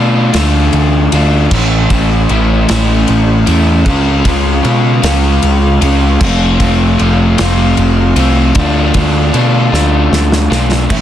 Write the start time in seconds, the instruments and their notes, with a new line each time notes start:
Already playing: picked electric bass B2, overdriven electric guitar D3 A3 D4 F4
0.33 picked electric bass D2, overdriven electric guitar D3 A3 D4 F4, snare, ride
0.73 picked electric bass D2, ride
1.12 picked electric bass D2, overdriven electric guitar A3 D4 F4, ride
1.51 picked electric bass A1, overdriven electric guitar A2 E3 A3 C#4 E4, kick, crash
1.90 picked electric bass A1, overdriven electric guitar A3 C#4 E4, kick, ride
2.29 picked electric bass A1, overdriven electric guitar E3 A3 C#4 E4, ride
2.68 picked electric bass A1, overdriven electric guitar A2 E3 A3 C#4 E4, snare, ride
3.08 picked electric bass A1, ride
3.46 picked electric bass E2, overdriven electric guitar A3 C#4 E4, ride
3.85 picked electric bass C#2, overdriven electric guitar C#3 G#3 C#4 F4, kick, ride
4.24 picked electric bass C#2, overdriven electric guitar G#3 C#4 F4, kick, ride
4.63 picked electric bass B2, overdriven electric guitar C#3 G#3 C#4 F4, ride
5.02 picked electric bass C#2, overdriven electric guitar C#3 G#3 C#4 F4, snare, ride
5.42 picked electric bass C#2, ride
5.81 picked electric bass C#2, overdriven electric guitar G#3 C#4 F4, ride
6.20 picked electric bass F1, overdriven electric guitar F3 A3 C4 F4, kick, crash
6.59 picked electric bass F1, overdriven electric guitar A3 C4 F4, kick, ride
6.98 picked electric bass F1, overdriven electric guitar F3 A3 C4 F4, ride
7.38 picked electric bass F1, overdriven electric guitar F3 A3 C4 F4, snare, ride
7.77 picked electric bass F1, ride
8.16 picked electric bass C2, overdriven electric guitar A3 C4 F4, ride
8.55 picked electric bass D2, overdriven electric guitar D3 A3 D4 F4, kick, ride
8.94 picked electric bass D2, overdriven electric guitar A3 D4 F4, kick, ride
9.33 picked electric bass B2, overdriven electric guitar D3 A3 D4 F4, ride
9.72 picked electric bass D2, overdriven electric guitar D3 A3 D4 F4, snare
10.12 picked electric bass D2, snare
10.32 snare
10.50 picked electric bass B1, overdriven electric guitar A3 D4 F4, snare
10.72 snare
10.89 picked electric bass A1, overdriven electric guitar A2 E3 A3 C#4 E4, kick, crash